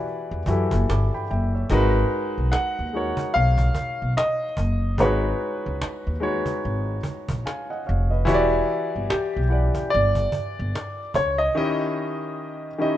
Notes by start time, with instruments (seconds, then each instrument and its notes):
Already playing: grand piano E3 E4 F#4 G4 B4 D5
0.08 cajon slap
0.31 upright bass E2
0.46 upright bass F#2, grand piano E3 E4 F#4 G4, cajon bass
0.50 grand piano A4
0.71 upright bass F#1, cajon bass, cajon slap
0.89 upright bass G1, grand piano B5 D6, cajon slap
1.14 grand piano G5 B5
1.28 upright bass F#1, grand piano E5 G5, cajon slap
1.54 grand piano C#5 E5, cajon slap
1.70 upright bass G#1, grand piano G#3 D#4 F#4 A#4 B4, cajon bass
2.11 cajon slap
2.38 upright bass B1
2.52 grand piano F#5, cajon slap
2.79 upright bass D#2
2.93 grand piano G#3 D#4 F#4 A#4 C#5
3.17 cajon bass
3.34 upright bass B1, grand piano F5, cajon slap
3.58 cajon bass
3.75 cajon bass
4.02 upright bass B1
4.17 grand piano D#5, cajon slap
4.57 upright bass F#1, cajon bass
4.98 upright bass G#1, grand piano G#3 D#4 F#4 B4 C#5, cajon bass
5.39 cajon slap
5.66 upright bass C#2
5.82 muted upright bass stroke, cajon slap
6.07 upright bass D#2
6.20 grand piano G#3 D#4 F#4 B4 C#5
6.46 cajon bass
6.65 upright bass G#1, cajon slap
7.03 cajon bass
7.29 upright bass A#1, cajon bass
7.46 grand piano F5 G#5, cajon slap
7.70 grand piano D#5 F#5
7.85 grand piano C#5 F5, cajon slap
7.89 upright bass F1
8.11 grand piano B4 D#5
8.25 upright bass E1, grand piano E3 E4 F#4 G4 C#5, cajon bass
8.34 grand piano D5
8.68 cajon slap
8.95 upright bass G1, cajon slap
9.10 grand piano G4, muted upright bass stroke, cajon slap
9.36 upright bass B1
9.49 grand piano E3 E4 G4 D5 F#5
9.75 cajon bass
9.90 upright bass G1, grand piano D5, cajon slap
10.15 cajon bass
10.32 cajon bass
10.59 upright bass G1
10.75 cajon slap
11.14 upright bass C#2, grand piano C#5, cajon bass
11.38 grand piano D#5
11.55 grand piano D#3 C#4 E4 G4 D#5
12.78 grand piano D#3 C#4 E4 G4 D#5